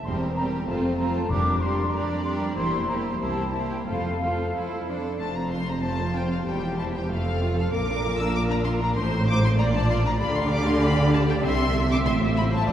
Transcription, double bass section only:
0.05 0.57 E1 medium
0.68 1.20 F1 soft
1.30 1.82 F1 medium
2.56 3.10 E1 medium
3.21 3.76 C2 soft
3.87 4.44 F1 medium
5.20 6.43 F1 medium
6.47 7.09 E1 medium
7.11 7.74 F1 medium
7.74 8.94 A#1 medium
8.97 9.57 A1 medium
9.59 10.21 A#1 medium
10.21 11.41 D2 medium
11.45 12.05 C2 medium
12.07 12.69 A1 medium
12.69 12.72 F1 medium

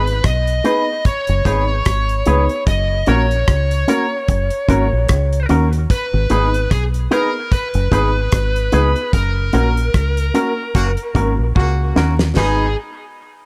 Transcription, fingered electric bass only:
0.00 0.19 G#1 medium
0.25 0.60 B1 medium
1.29 1.44 F#1 medium
1.45 1.81 G#1 loud
1.87 2.22 G#1 medium
2.27 2.47 C#2 medium
2.67 3.02 F#1 loud
3.08 3.43 A#1 medium
3.48 3.83 C#2 medium
4.29 4.49 F#1 loud
4.69 4.89 G#1 loud
4.93 5.08 A#1 medium
5.10 5.45 C#2 loud
5.50 5.85 D#2 medium
6.14 6.29 G#1 loud
6.31 6.66 G#1 medium
6.71 7.07 B1 medium
7.75 7.90 F#1 loud
7.92 8.28 G#1 medium
8.33 8.68 G#1 medium
8.73 8.93 C#2 medium
9.13 9.49 F#1 loud
9.54 9.89 A#1 medium
9.94 10.30 C#2 medium
10.75 10.95 F#1 medium
11.15 11.36 G#1 loud
11.39 11.54 A#1 medium
11.56 11.92 C#2 medium
11.96 12.32 D#2 medium
12.37 12.74 G#1 loud

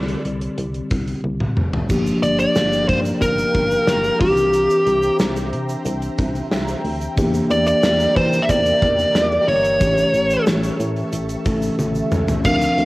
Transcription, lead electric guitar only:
2.23 2.38 D5 medium
2.40 2.86 D5 loud
2.89 2.97 C5 medium
3.22 4.20 A#4 medium
4.21 5.16 G4 medium
7.51 7.66 D5 loud
7.67 8.13 D5 loud
8.17 8.43 C5 medium
8.42 8.49 E5 medium
8.50 9.48 D5 loud
9.48 10.43 C#5 medium
12.45 12.85 F5 loud

